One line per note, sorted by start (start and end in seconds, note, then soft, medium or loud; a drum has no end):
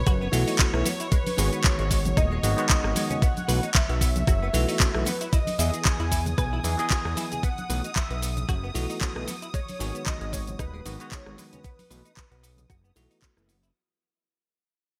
0.00 0.82 B4 loud
0.00 5.34 C#5 medium
0.06 0.28 F#1 medium
0.06 0.11 F#4 loud
0.06 kick loud
0.06 cross-stick medium
0.06 closed hi-hat medium
0.06 cabasa medium
0.06 shaker soft
0.21 0.27 B3 medium
0.21 cabasa soft
0.32 0.44 B1 loud
0.32 0.70 E3 loud
0.32 0.70 A3 medium
0.32 0.70 B3 medium
0.32 0.70 F#4 loud
0.32 open hi-hat loud
0.32 high conga medium
0.32 cabasa medium
0.32 shaker medium
0.47 0.53 D#4 medium
0.47 open hi-hat medium
0.47 cabasa soft
0.47 shaker soft
0.59 0.64 C#4 medium
0.59 kick loud
0.59 clap loud
0.59 closed hi-hat medium
0.59 cabasa medium
0.59 shaker soft
0.73 0.83 B1 medium
0.73 0.86 E3 medium
0.73 0.87 A3 medium
0.73 0.87 B3 medium
0.73 0.87 E4 medium
0.73 cross-stick medium
0.73 cabasa soft
0.86 0.93 B3 medium
0.86 open hi-hat loud
0.86 high conga loud
0.86 cabasa medium
0.86 shaker medium
1.00 1.06 E4 medium
1.00 closed hi-hat medium
1.00 cabasa soft
1.00 shaker soft
1.12 1.16 G#3 loud
1.12 1.66 B4 loud
1.12 kick loud
1.12 closed hi-hat medium
1.12 cabasa soft
1.12 shaker soft
1.26 open hi-hat medium
1.26 high conga loud
1.26 cabasa soft
1.26 shaker soft
1.37 1.50 G#1 loud
1.37 2.40 D#3 medium
1.37 2.40 G#3 medium
1.37 2.41 B3 medium
1.37 2.41 F#4 loud
1.37 1.49 G#4 medium
1.37 open hi-hat loud
1.37 cabasa medium
1.37 shaker medium
1.53 1.59 B3 loud
1.53 closed hi-hat soft
1.53 cabasa soft
1.53 shaker soft
1.64 2.17 C#5 medium
1.64 kick loud
1.64 clap loud
1.64 closed hi-hat medium
1.64 high conga medium
1.64 cabasa medium
1.64 shaker soft
1.79 2.13 G#1 medium
1.79 1.83 G#3 medium
1.79 closed hi-hat soft
1.79 cabasa soft
1.91 1.98 G#3 medium
1.91 kick medium
1.91 open hi-hat loud
1.91 cabasa medium
1.91 shaker medium
2.05 closed hi-hat medium
2.05 high conga loud
2.05 low conga medium
2.05 cabasa soft
2.05 shaker soft
2.17 2.39 D#1 medium
2.17 2.21 D#4 loud
2.17 2.66 D#5 loud
2.17 kick loud
2.17 cross-stick medium
2.17 closed hi-hat medium
2.17 cabasa medium
2.17 shaker soft
2.31 2.38 G#3 medium
2.31 cabasa soft
2.43 2.55 G#1 loud
2.43 2.56 D#3 medium
2.43 2.56 G#3 medium
2.43 2.56 B3 medium
2.43 2.56 F#4 loud
2.43 open hi-hat loud
2.43 high conga medium
2.43 cabasa medium
2.43 shaker medium
2.57 3.20 D#3 loud
2.57 3.21 G#3 medium
2.57 2.64 B3 medium
2.57 3.21 B3 medium
2.57 3.21 F#4 loud
2.57 closed hi-hat medium
2.57 cabasa soft
2.57 shaker soft
2.69 2.74 G#3 medium
2.69 3.25 D#5 loud
2.69 kick loud
2.69 clap loud
2.69 closed hi-hat medium
2.69 shaker soft
2.84 2.93 G#1 medium
2.84 cross-stick medium
2.84 cabasa soft
2.96 3.03 G#3 medium
2.96 open hi-hat loud
2.96 high conga loud
2.96 cabasa medium
2.96 shaker medium
3.10 3.16 C#4 medium
3.10 closed hi-hat medium
3.10 low conga medium
3.10 cabasa soft
3.10 shaker soft
3.22 3.27 B3 loud
3.22 3.77 F#5 loud
3.22 kick loud
3.22 closed hi-hat medium
3.22 cabasa medium
3.22 shaker soft
3.36 closed hi-hat soft
3.36 high conga medium
3.36 cabasa soft
3.36 shaker soft
3.48 3.60 B1 loud
3.48 3.64 E3 medium
3.48 3.64 A3 medium
3.48 3.64 B3 medium
3.48 3.64 F#4 medium
3.48 3.59 B4 medium
3.48 open hi-hat loud
3.48 cabasa medium
3.48 shaker medium
3.63 3.69 D#4 medium
3.63 closed hi-hat soft
3.63 cabasa soft
3.63 shaker soft
3.74 5.09 E5 loud
3.74 kick loud
3.74 clap loud
3.74 closed hi-hat medium
3.74 high conga medium
3.74 cabasa medium
3.74 shaker soft
3.89 4.24 B1 medium
3.89 3.93 B3 medium
3.89 closed hi-hat soft
3.89 cabasa soft
4.01 4.09 B3 medium
4.01 kick medium
4.01 open hi-hat loud
4.01 cabasa medium
4.01 shaker medium
4.15 closed hi-hat soft
4.15 high conga loud
4.15 low conga medium
4.15 cabasa soft
4.15 shaker soft
4.27 4.49 F#1 medium
4.27 4.32 F#4 loud
4.27 kick loud
4.27 cross-stick medium
4.27 closed hi-hat medium
4.27 cabasa soft
4.27 shaker soft
4.42 4.48 B3 medium
4.42 cabasa soft
4.53 4.66 B1 loud
4.53 4.91 E3 medium
4.53 4.91 A3 medium
4.53 4.91 B3 medium
4.53 4.92 F#4 loud
4.53 open hi-hat loud
4.53 high conga medium
4.53 cabasa medium
4.53 shaker medium
4.68 4.74 D#4 medium
4.68 open hi-hat medium
4.68 cabasa soft
4.68 shaker soft
4.80 4.85 C#4 medium
4.80 kick loud
4.80 clap loud
4.80 closed hi-hat medium
4.80 cabasa soft
4.80 shaker soft
4.94 5.04 B1 medium
4.94 5.08 E3 medium
4.94 5.08 A3 medium
4.94 5.08 B3 medium
4.94 5.08 E4 medium
4.94 cross-stick medium
4.94 cabasa soft
5.06 5.14 B3 medium
5.06 5.33 B4 loud
5.06 open hi-hat loud
5.06 high conga loud
5.06 cabasa medium
5.06 shaker medium
5.21 5.27 E4 medium
5.21 closed hi-hat medium
5.21 cabasa soft
5.21 shaker soft
5.33 5.37 E4 loud
5.33 5.88 D#5 loud
5.33 13.76 D#6 medium
5.33 kick loud
5.33 closed hi-hat medium
5.33 cabasa medium
5.33 shaker soft
5.47 open hi-hat medium
5.47 high conga medium
5.47 cabasa soft
5.47 shaker soft
5.58 5.71 E2 loud
5.58 6.61 E3 medium
5.58 6.62 B3 medium
5.58 6.62 G#4 loud
5.58 5.70 E5 medium
5.58 open hi-hat loud
5.58 cabasa medium
5.58 shaker medium
5.73 5.80 G#4 loud
5.73 closed hi-hat soft
5.73 cabasa soft
5.73 shaker soft
5.85 6.38 G#5 loud
5.85 kick loud
5.85 clap loud
5.85 closed hi-hat medium
5.85 high conga medium
5.85 cabasa medium
5.85 shaker soft
5.99 6.34 E2 medium
5.99 6.04 E4 medium
5.99 closed hi-hat soft
5.99 cabasa soft
6.12 6.19 E4 medium
6.12 kick medium
6.12 open hi-hat loud
6.12 cabasa medium
6.12 shaker medium
6.26 closed hi-hat medium
6.26 high conga medium
6.26 low conga medium
6.26 cabasa soft
6.26 shaker soft
6.38 6.60 B1 medium
6.38 6.42 B4 loud
6.38 7.45 G#5 loud
6.38 kick loud
6.38 cross-stick medium
6.38 closed hi-hat medium
6.38 cabasa medium
6.38 shaker soft
6.53 6.59 E4 medium
6.53 cabasa soft
6.63 6.76 E2 loud
6.63 6.76 E3 loud
6.63 6.77 B3 medium
6.63 6.77 D#4 medium
6.63 6.77 G#4 loud
6.63 open hi-hat loud
6.63 high conga medium
6.63 cabasa medium
6.63 shaker medium
6.78 7.41 E3 loud
6.78 7.42 B3 medium
6.78 6.85 G#4 medium
6.78 7.42 G#4 loud
6.78 7.42 D#5 medium
6.78 closed hi-hat medium
6.78 cabasa soft
6.78 shaker soft
6.90 6.95 F#4 medium
6.90 kick loud
6.90 clap loud
6.90 closed hi-hat medium
6.90 cabasa medium
6.90 shaker soft
7.05 7.15 E2 medium
7.05 cross-stick medium
7.05 cabasa soft
7.17 7.24 E4 medium
7.17 open hi-hat loud
7.17 high conga medium
7.17 cabasa medium
7.17 shaker medium
7.32 7.38 G#4 medium
7.32 closed hi-hat soft
7.32 low conga medium
7.32 cabasa soft
7.32 shaker soft
7.43 7.48 B3 loud
7.43 7.96 F#5 loud
7.43 kick loud
7.43 closed hi-hat medium
7.43 cabasa medium
7.43 shaker soft
7.57 closed hi-hat soft
7.57 high conga medium
7.57 cabasa soft
7.57 shaker soft
7.69 7.81 B1 loud
7.69 7.85 E3 medium
7.69 7.85 A3 medium
7.69 7.85 B3 medium
7.69 7.86 F#4 medium
7.69 7.81 B4 medium
7.69 open hi-hat loud
7.69 cabasa medium
7.69 shaker medium
7.84 7.90 D#4 loud
7.84 closed hi-hat medium
7.84 cabasa soft
7.84 shaker soft
7.96 8.45 E5 loud
7.96 kick loud
7.96 clap loud
7.96 closed hi-hat medium
7.96 high conga medium
7.96 cabasa medium
7.96 shaker soft
8.10 8.45 B1 medium
8.10 8.14 B3 medium
8.10 closed hi-hat soft
8.10 cabasa soft
8.22 8.30 B3 medium
8.22 open hi-hat loud
8.22 cabasa loud
8.22 shaker medium
8.37 closed hi-hat medium
8.37 high conga medium
8.37 low conga medium
8.37 cabasa soft
8.37 shaker soft
8.49 8.70 F#1 medium
8.49 8.53 F#4 loud
8.49 kick loud
8.49 cross-stick medium
8.49 closed hi-hat medium
8.49 cabasa soft
8.49 shaker soft
8.63 8.69 B3 medium
8.63 cabasa soft
8.74 8.87 B1 loud
8.74 9.12 E3 loud
8.74 9.12 A3 medium
8.74 9.12 B3 medium
8.74 9.12 F#4 loud
8.74 open hi-hat loud
8.74 high conga medium
8.74 cabasa medium
8.74 shaker medium
8.90 8.96 D#4 medium
8.90 open hi-hat medium
8.90 cabasa soft
8.90 shaker soft
9.01 9.06 C#4 medium
9.01 kick loud
9.01 clap loud
9.01 closed hi-hat medium
9.01 cabasa medium
9.01 shaker medium
9.15 9.25 B1 medium
9.15 9.29 E3 medium
9.15 9.29 A3 medium
9.15 9.29 B3 medium
9.15 9.29 E4 medium
9.15 cross-stick medium
9.15 cabasa soft
9.28 9.35 B3 medium
9.28 open hi-hat loud
9.28 high conga loud
9.28 cabasa loud
9.28 shaker medium
9.42 9.48 E4 medium
9.42 closed hi-hat medium
9.42 cabasa soft
9.42 shaker soft
9.54 9.58 G#3 loud
9.54 10.08 C#5 loud
9.54 kick loud
9.54 closed hi-hat medium
9.54 cabasa medium
9.54 shaker soft
9.68 open hi-hat medium
9.68 high conga medium
9.68 cabasa soft
9.68 shaker soft
9.79 9.92 G#1 loud
9.79 10.82 D#3 loud
9.79 10.82 G#3 medium
9.79 10.83 B3 medium
9.79 10.83 F#4 loud
9.79 9.91 G#4 medium
9.79 open hi-hat loud
9.79 cabasa loud
9.79 shaker medium
9.95 10.01 B3 medium
9.95 closed hi-hat soft
9.95 cabasa soft
9.95 shaker soft
10.06 10.34 D#5 loud
10.06 kick loud
10.06 clap loud
10.06 closed hi-hat medium
10.06 high conga medium
10.06 cabasa medium
10.06 shaker soft
10.21 10.55 G#1 medium
10.21 10.25 G#3 medium
10.21 closed hi-hat soft
10.21 cabasa soft
10.33 10.40 G#3 medium
10.33 10.58 C#5 loud
10.33 kick medium
10.33 open hi-hat loud
10.33 cabasa loud
10.33 shaker medium
10.47 closed hi-hat medium
10.47 high conga medium
10.47 low conga medium
10.47 cabasa soft
10.47 shaker soft
10.59 10.81 D#1 medium
10.59 10.64 D#4 loud
10.59 10.84 B4 loud
10.59 kick loud
10.59 cross-stick medium
10.59 closed hi-hat medium
10.59 cabasa medium
10.59 shaker soft
10.74 10.80 G#3 medium
10.74 cabasa soft
10.85 10.97 G#1 loud
10.85 10.98 D#3 medium
10.85 10.98 G#3 medium
10.85 10.98 B3 medium
10.85 10.98 F#4 loud
10.85 11.14 B4 loud
10.85 open hi-hat loud
10.85 high conga medium
10.85 cabasa medium
10.85 shaker medium
10.99 11.63 D#3 loud
10.99 11.63 G#3 medium
10.99 11.06 B3 medium
10.99 11.63 B3 medium
10.99 11.64 F#4 loud
10.99 closed hi-hat medium
10.99 cabasa soft
10.99 shaker soft
11.12 11.16 G#3 medium
11.12 11.41 C#5 loud
11.12 kick loud
11.12 clap loud
11.12 closed hi-hat medium
11.12 cabasa medium
11.12 shaker medium
11.26 11.36 G#1 medium
11.26 cross-stick medium
11.26 cabasa soft
11.38 11.45 G#3 medium
11.38 13.23 B4 loud
11.38 open hi-hat loud
11.38 high conga medium
11.38 cabasa loud
11.38 shaker medium
11.53 11.59 C#4 medium
11.53 closed hi-hat medium
11.53 low conga medium
11.53 cabasa soft
11.53 shaker soft
11.64 11.69 B3 loud
11.64 kick loud
11.64 closed hi-hat medium
11.64 cabasa medium
11.64 shaker soft
11.79 open hi-hat medium
11.79 high conga medium
11.79 cabasa soft
11.79 shaker soft
11.90 12.02 B1 loud
11.90 12.06 E3 medium
11.90 12.06 A3 medium
11.90 12.07 B3 medium
11.90 12.07 F#4 medium
11.90 12.02 B4 medium
11.90 open hi-hat loud
11.90 cabasa loud
11.90 shaker medium
12.05 12.11 D#4 medium
12.05 closed hi-hat medium
12.05 cabasa soft
12.05 shaker soft
12.17 kick loud
12.17 clap loud
12.17 closed hi-hat medium
12.17 high conga medium
12.17 cabasa medium
12.17 shaker soft
12.31 12.66 B1 medium
12.31 12.35 B3 medium
12.31 closed hi-hat soft
12.31 cabasa soft
12.43 12.50 B3 medium
12.43 open hi-hat loud
12.43 cabasa loud
12.43 shaker medium
12.57 closed hi-hat medium
12.57 high conga medium
12.57 low conga medium
12.57 cabasa soft
12.57 shaker soft
12.70 12.91 F#1 medium
12.70 12.74 F#4 loud
12.70 kick loud
12.70 cross-stick medium
12.70 closed hi-hat medium
12.70 cabasa medium
12.70 shaker soft
12.84 12.90 B3 medium
12.84 cabasa soft
12.84 shaker soft
12.96 13.08 B1 loud
12.96 13.33 E3 loud
12.96 13.33 A3 medium
12.96 13.34 B3 medium
12.96 13.34 F#4 loud
12.96 open hi-hat loud
12.96 high conga medium
12.96 cabasa medium
12.96 shaker medium
13.11 13.17 D#4 medium
13.11 open hi-hat medium
13.11 cabasa soft
13.11 shaker soft
13.22 13.27 C#4 medium
13.22 kick loud
13.22 clap loud
13.22 closed hi-hat medium
13.22 cabasa medium
13.22 shaker soft
13.36 13.71 F#1 loud
13.36 13.50 E3 medium
13.36 13.50 A3 medium
13.36 13.50 B3 medium
13.36 13.50 E4 loud
13.36 cross-stick medium
13.36 shaker soft
13.49 13.56 B3 medium
13.49 open hi-hat loud
13.49 high conga medium
13.49 cabasa loud
13.49 shaker medium
13.63 13.69 E4 medium
13.63 closed hi-hat medium
13.63 cabasa soft
13.63 shaker soft